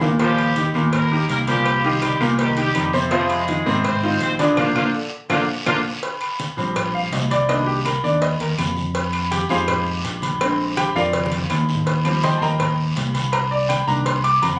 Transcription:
Already playing: fingered electric bass D#2
0.01 grand piano A#2 A#3 A#4, low bongo, high conga, low timbale, short guiro
0.19 grand piano A#2 A#3 A#4, trombone section F3, horn section G3 G4, cowbell, low agogo, long guiro
0.38 cowbell, high conga, low agogo, claves
0.56 grand piano D#3 D#4 G4, cowbell, high conga, short guiro
0.74 fingered electric bass D#2, grand piano A#2 A#3 A#4, trombone section D#3, low agogo, short guiro
0.92 horn section A#3 A#4, cowbell, high conga, low conga, low agogo, long guiro, claves
1.11 grand piano D#3 D#4 G4, high conga
1.29 fingered electric bass C2, horn section A#3 A#4, cowbell, low timbale, low agogo, short guiro
1.47 grand piano A#2 A#3 A#4, trombone section F3, horn section G3 G4, cowbell, high conga, low agogo, short guiro
1.65 cowbell, low agogo, long guiro, claves
1.84 grand piano D#3 D#4 G4, horn section F3 F4, high conga
2.02 trombone section D#3, horn section G3 G4, cowbell, high conga, low agogo, short guiro, claves
2.20 fingered electric bass C2, grand piano A#2 A#3 A#4, horn section F3 F4, short guiro
2.39 trombone section D#3, horn section G3 G4, cowbell, low agogo, long guiro
2.57 grand piano D#3 D#4 G4, horn section G3 G4, cowbell
2.75 fingered electric bass F2, trombone section D#3, cowbell, high conga, low agogo, short guiro, claves
2.93 grand piano C3 C4 C5, high conga, short guiro
3.11 grand piano C3 C4 C5, trombone section F3, horn section G#3 G#4, cowbell, low agogo, long guiro
3.30 cowbell, high conga, low agogo, claves
3.48 grand piano D#3 D#4 F4, cowbell, high conga, short guiro
3.65 fingered electric bass G#2, grand piano C3 C4 C5, trombone section D#3, high conga, low agogo, short guiro
3.84 horn section C4 C5, cowbell, high conga, low conga, low agogo, long guiro, claves
4.03 grand piano D#3 D#4 F4, high conga
4.20 fingered electric bass A#1, horn section C4 C5, cowbell, high conga, low timbale, low agogo, short guiro
4.39 grand piano D3 D4 D5, trombone section F3, horn section G#3 G#4, cowbell, high conga, low agogo, short guiro
4.57 fingered electric bass A#1, horn section F3 A#3 D4 F4, grand piano A#3 D4 F4, cowbell, high conga, high timbale, long guiro, claves
4.75 fingered electric bass A#1, horn section F3 A#3 D4 F4, grand piano A#3 D4 F4, cowbell, high conga, high timbale, long guiro, claves
4.94 trombone section D3
5.29 fingered electric bass A#1, trombone section D3, horn section F3 A#3 D4 F4, grand piano A#3 D4 F4, cowbell, high conga, high timbale, long guiro, claves
5.66 fingered electric bass A#1, trombone section D3, horn section F3 A#3 D4 F4, grand piano A#3 D4 F4, cowbell, high conga, high timbale, long guiro, claves
6.03 cowbell, high conga, low agogo
6.21 cowbell, high conga, low agogo, claves
6.40 cowbell, high conga, short guiro
6.57 fingered electric bass A#1, grand piano F3 G3 C4, low agogo, short guiro
6.76 cowbell, high conga, low conga, low agogo, long guiro, claves
6.94 grand piano F5, high conga
7.12 fingered electric bass C2, grand piano D#5, cowbell, low timbale, low agogo, short guiro
7.31 grand piano D5, cowbell, high conga, low agogo, short guiro
7.48 grand piano D#3 A#3 D4 D#5, cowbell, high conga, low agogo, long guiro, claves
7.62 grand piano F#4
7.67 grand piano G4, high conga
7.85 grand piano A#4, cowbell, high conga, low agogo, short guiro, claves
8.03 fingered electric bass D#2, grand piano D#3 A#3 D4 D5, short guiro
8.22 grand piano D#5, cowbell, high conga, low agogo, long guiro
8.40 fingered electric bass D#2, grand piano A#4, cowbell, high conga
8.58 fingered electric bass F2, cowbell, high conga, low timbale, low agogo, short guiro, claves
8.77 high conga, short guiro
8.95 cowbell, high conga, low agogo, long guiro
9.13 cowbell, high conga, low agogo, claves
9.31 grand piano G4 G5, cowbell, high conga, short guiro
9.49 fingered electric bass F2, grand piano G#3 D#4 F4 G4 G#4 C5 F5, high conga, low agogo, short guiro
9.68 cowbell, high conga, low conga, low agogo, long guiro, claves
9.86 high conga
10.04 fingered electric bass A#1, cowbell, high conga, low agogo, short guiro
10.22 cowbell, high conga, low agogo, short guiro
10.41 grand piano D3 G#3 C4, cowbell, low agogo, long guiro, claves
10.59 high conga
10.77 grand piano G4 G5, cowbell, high conga, low agogo, short guiro, claves
10.95 fingered electric bass F2, grand piano F4 A#4 D5 F5, high conga, short guiro
11.13 cowbell, high conga, low agogo, long guiro
11.26 high conga
11.32 cowbell
11.38 high conga
11.50 fingered electric bass D#2, cowbell, low timbale, low agogo, short guiro, claves
11.69 short guiro
11.75 low conga
11.86 cowbell, high conga, low agogo, long guiro
12.05 grand piano F3 G3 C4, cowbell, high conga, low agogo, claves
12.23 grand piano C5 D#5 G5 C6, cowbell, high conga, short guiro
12.37 fingered electric bass D#2, grand piano A5, low agogo
12.42 grand piano A#4 D#5 G5 A#5, short guiro
12.59 cowbell, high conga, low conga, low agogo, long guiro, claves
12.78 high conga
12.96 fingered electric bass C2, cowbell, high conga, low timbale, low agogo, short guiro
13.14 cowbell, high conga, low agogo, short guiro
13.32 grand piano A#5, cowbell, low agogo, long guiro, claves
13.51 grand piano D5, high conga
13.69 grand piano G5, cowbell, high conga, low agogo, short guiro, claves
13.87 fingered electric bass C2, grand piano D#3 A#3 D4 A#5, short guiro
14.05 grand piano C6, cowbell, high conga, low agogo, long guiro
14.24 grand piano D6, cowbell, high conga
14.42 fingered electric bass F2, grand piano A#5, cowbell, high conga, low agogo, short guiro, claves

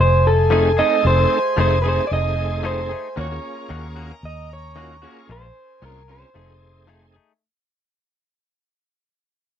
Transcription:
Already playing: horn section A3 G#4 D#5 G#5
0.00 fingered electric bass F1, clean electric guitar C5
0.27 clean electric guitar A4
0.50 clean electric guitar F3 A3 D#4 G#4, tonewheel organ A3 C4 D#4 G#4
0.77 tonewheel organ A3 C4 D#4 A4, clean electric guitar A3 D#4 G#4 D#5
1.05 fingered electric bass F1, clean electric guitar C5
1.57 fingered electric bass F1, clean electric guitar F3 A3 D#4 G#4 C5, tonewheel organ A3 C4 D#4 G#4
1.82 tonewheel organ A3 C4 D#4 G#4, clean electric guitar D#4 G#4 B4
1.86 clean electric guitar A3 C5
2.07 clean electric guitar D5
2.11 fingered electric bass F1, tonewheel organ A3 C4 D#4 G#4, clean electric guitar D#5
2.63 clean electric guitar F3 A3 D#4 G#4 C5
2.89 clean electric guitar A3 D#4 G#4
3.16 fingered electric bass D#2, clean electric guitar D#3 A#3 C#4 F#4, tonewheel organ A#3 C#4 F4 F#4, horn section C#4 A#4 D#5 A#5
3.20 clean electric guitar C#5
3.31 tonewheel organ A#3 C#4 F4 G#4
3.69 fingered electric bass D#2, clean electric guitar D#3 A#3 C#4 F#4
3.96 clean electric guitar A#3 C#4 F#4
4.23 fingered electric bass D#2, clean electric guitar D#5
4.53 clean electric guitar C#5
4.75 clean electric guitar D#3 A#3 C#4 F#4, tonewheel organ A#3 C#4 F4 F#4
5.02 tonewheel organ A#3 C#4 F4 G#4, clean electric guitar A#3 C#4 F#4
5.29 fingered electric bass A#1, clean electric guitar A#2 G#3 C#4 F4 C5, horn section G#4 A#4 G#5
5.82 fingered electric bass C2, clean electric guitar A#2 G#3 C#4 F4 A#4, tonewheel organ C4 C#4 F4 G#4
6.08 clean electric guitar G#3 C#4 F4 C5, tonewheel organ C4 C#4 F4 G#4
6.34 fingered electric bass F1, clean electric guitar F3 A3 D#4 G#4, tonewheel organ A3 C4 D#4 G#4, horn section A3 D#4 D#5
6.87 clean electric guitar F3 A3 D#4 G#4
7.14 clean electric guitar A3 D#4 G#4

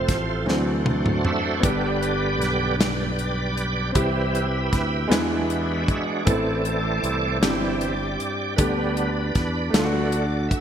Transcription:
Already playing: grand piano F3 A3 C4 C6, tonewheel organ A3 C4 F4 C5, french horn section C4 F4 A4 C5
0.08 fingered electric bass A1, kick, snare, closed hi-hat
0.46 fingered electric bass D2, grand piano E3 F#3 C4, tonewheel organ A3 D4 F#4, french horn section D4 F#4, snare
0.86 high tom
1.06 mid tom
1.25 tonewheel organ E5, mid tom
1.57 grand piano B3, tonewheel organ C#5
1.63 fingered electric bass G1, grand piano G2 D4, tonewheel organ D3 G3 B3 G4 B4 D5, kick, closed hi-hat
1.67 grand piano G4
2.03 closed hi-hat
2.40 fingered electric bass B1, snare, closed hi-hat
2.78 tonewheel organ G4 B4 D5, snare, closed hi-hat
3.19 closed hi-hat
3.57 closed hi-hat
3.92 fingered electric bass C2, grand piano C3 C4 E4 G4, tonewheel organ E3 G3 E4 B4, kick, closed hi-hat
3.96 tonewheel organ C4 G4
4.35 closed hi-hat
4.73 fingered electric bass D2, kick, snare, closed hi-hat
5.08 fingered electric bass E2, grand piano E3 G#3 B3 D4 E4, tonewheel organ F#4, snare
5.12 tonewheel organ G#3 D4, grand piano B4, closed hi-hat
5.50 closed hi-hat
5.86 tonewheel organ E5, kick, closed hi-hat
6.24 fingered electric bass A1, grand piano A2 B3 E4, tonewheel organ E3 A3 C4 A4 D5, kick, closed hi-hat
6.29 grand piano C4 A4
6.65 closed hi-hat
7.03 fingered electric bass C2, closed hi-hat
7.41 fingered electric bass G1, grand piano G2 C4 D4 G4, tonewheel organ E3 G3 C4 G4 D5, snare, closed hi-hat
7.50 grand piano E4
7.81 closed hi-hat
8.20 closed hi-hat
8.56 fingered electric bass D2, tonewheel organ D3 G3 B3 D4 B4, grand piano D3 A3 D4 G4, kick, closed hi-hat
8.62 grand piano B3
8.97 closed hi-hat
9.35 fingered electric bass E2, kick, snare, closed hi-hat
9.70 fingered electric bass D2, tonewheel organ D3 F#4, grand piano A3, snare, closed hi-hat
9.74 grand piano D3 D4 F4, tonewheel organ A3
9.85 grand piano F#4
10.09 tonewheel organ D5, closed hi-hat
10.49 tonewheel organ E5, kick, closed hi-hat

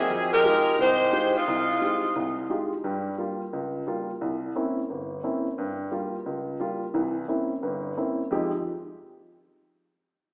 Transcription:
Already playing: saxophone section C4
0.00 saxophone section D#3 G4 G#4
0.10 grand piano F2
0.33 saxophone section G#3 D#4 G4 A#4
0.44 grand piano G#3 D#4 F4 G4
0.78 grand piano C2, saxophone section G#3 D#4 G4 C5
1.12 grand piano G#3 D#4 F4 G4
1.37 saxophone section G#3 C4 D#4 F4
1.47 grand piano C2
1.81 grand piano G#3 D#4 F4 G4
2.16 grand piano C2
2.50 grand piano G#3 D#4 F4 G4
2.84 grand piano G2 G3
3.18 grand piano G3 A#3 F4
3.53 grand piano C#2
3.87 grand piano G3 A#3 F4
4.21 grand piano C2
4.55 grand piano A#3 C4 C#4 E4
4.90 grand piano G1
5.23 grand piano A#3 C4 C#4 E4
5.58 grand piano G2
5.91 grand piano G3 A#3 F4
6.26 grand piano C#2
6.60 grand piano G3 A#3 F4
6.94 grand piano C2 E3
7.28 grand piano A#3 C4 C#4 E4
7.63 grand piano G1 G2
7.97 grand piano A#3 C4 C#4 E4
8.31 grand piano F2 F3 G#3 D#4 G4

